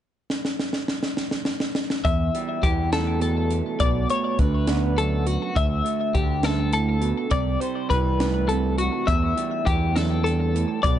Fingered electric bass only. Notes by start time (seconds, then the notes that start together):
2.05 E2
2.63 E2
3.81 B1
4.39 D2
5.56 D2
6.14 D2
7.31 C2
7.91 C2
9.08 E2
9.67 E2
10.85 B1